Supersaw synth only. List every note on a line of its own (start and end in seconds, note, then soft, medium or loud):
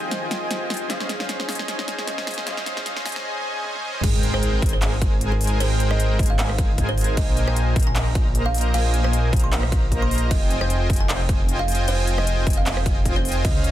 0.00 0.88 F4 medium
0.00 0.88 C5 medium
0.00 0.88 D#5 medium
0.00 0.88 G5 medium
0.00 0.88 G#5 loud
0.90 1.47 C#4 medium
0.90 1.46 G#4 medium
0.90 1.47 C5 medium
0.90 1.47 D#5 medium
0.90 1.47 F5 medium
1.49 2.45 C#4 medium
1.49 2.45 G#4 medium
1.49 2.45 C5 medium
1.49 2.45 D#5 medium
1.49 2.45 G#5 loud
2.47 3.03 C#4 medium
2.47 3.03 G#4 medium
2.47 3.03 C5 medium
2.47 3.03 D#5 medium
2.47 3.03 F5 medium
3.05 3.82 C#4 medium
3.05 3.82 G#4 medium
3.05 3.82 C5 medium
3.05 3.82 D#5 medium
3.05 3.82 G#5 loud
3.84 4.01 C#4 medium
3.84 4.01 G#4 medium
3.84 4.01 C5 medium
3.84 4.01 D#5 medium
3.84 4.01 G#5 medium
4.04 4.60 G#3 medium
4.04 4.60 A#4 medium
4.04 4.60 C5 medium
4.04 4.60 G5 medium
4.62 5.58 G#3 loud
4.62 5.58 G#4 medium
4.62 5.58 C5 medium
5.61 6.17 G#3 medium
5.61 6.17 G#4 medium
5.61 6.17 A#4 medium
5.61 6.17 C5 medium
5.61 6.17 G5 medium
6.19 7.15 G#3 medium
6.19 7.15 G#4 medium
6.19 7.15 A#4 medium
6.19 7.15 C5 medium
6.19 7.15 G#5 loud
7.17 7.74 A#3 medium
7.17 7.74 A#4 medium
7.17 7.74 G#5 medium
7.76 8.72 A#3 medium
7.76 8.72 C5 medium
7.76 8.72 D#5 medium
8.74 9.31 A#3 medium
8.74 9.31 A#4 medium
8.74 9.31 C5 medium
8.74 9.31 D#5 medium
8.74 9.31 G#5 medium
9.33 10.10 A#3 loud
9.33 10.10 A#4 medium
9.33 10.10 C5 medium
9.33 10.10 D#5 medium
9.33 10.10 A#5 loud
10.11 10.29 A#3 medium
10.11 10.29 A#4 medium
10.11 10.29 C5 medium
10.11 10.29 D#5 medium
10.11 10.29 A#5 medium
10.31 10.88 F4 medium
10.90 11.86 F4 loud
10.90 11.86 G#5 loud
11.88 12.45 F4 medium
11.88 12.45 C5 medium
11.88 12.45 D#5 medium
11.88 12.45 G5 medium
11.88 12.45 G#5 medium
13.45 13.71 C#4 medium
13.45 13.71 G#4 medium